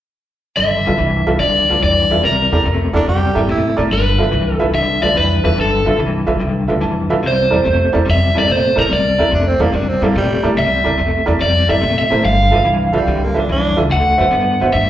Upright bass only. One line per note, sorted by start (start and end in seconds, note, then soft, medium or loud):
0.59 0.83 G1 medium
0.87 0.98 B1 medium
1.00 1.24 C2 medium
1.27 1.39 B1 medium
1.40 1.65 C2 medium
1.69 1.81 D2 medium
1.83 2.08 F2 medium
2.11 2.23 E2 medium
2.24 2.49 C2 medium
2.52 2.64 E2 medium
2.66 2.91 F2 medium
2.94 3.06 E2 medium
3.07 3.33 F2 loud
3.36 3.48 G2 medium
3.49 3.74 A#2 medium
3.78 3.90 A2 medium
3.92 4.16 G1 loud
4.20 4.31 B1 medium
4.34 4.58 C2 medium
4.61 4.73 B1 medium
4.75 5.00 C2 medium
5.03 5.15 D2 medium
5.16 5.41 F2 medium
5.45 5.56 E2 medium
5.58 5.83 G1 medium
5.86 5.98 B1 medium
6.00 6.25 C2 medium
6.28 6.39 B1 medium
6.42 6.66 C2 medium
6.70 6.81 D2 medium
6.83 7.08 F2 medium
7.10 7.24 B1 medium
7.24 7.49 C2 medium
7.52 7.64 E2 medium
7.66 7.91 F2 medium
7.95 8.06 E2 medium
8.09 8.33 F2 medium
8.37 8.48 G2 medium
8.50 8.75 A#2 medium
8.77 8.89 A2 medium
8.91 9.16 C2 medium
9.19 9.31 E2 medium
9.32 9.57 F2 medium
9.60 9.72 E2 medium
9.73 9.99 F2 medium
10.02 10.14 G2 medium
10.16 10.41 A#2 medium
10.44 10.56 A2 medium
10.57 10.82 C2 medium
10.85 10.97 E2 medium
11.00 11.25 F2 medium
11.28 11.40 E2 medium
11.42 11.67 F2 medium
11.70 11.81 G2 medium
11.83 12.08 A#2 medium
12.12 12.23 A2 medium
12.25 12.50 G1 loud
12.53 12.65 B1 medium
12.65 12.91 C2 medium
12.93 13.06 B1 loud
13.08 13.33 C2 medium
13.37 13.49 D2 medium
13.50 13.75 F2 medium
13.79 13.90 C#2 medium
13.92 14.17 D2 medium
14.20 14.32 F#2 medium
14.34 14.59 G2 medium
14.62 14.74 F#2 medium
14.75 14.90 G2 medium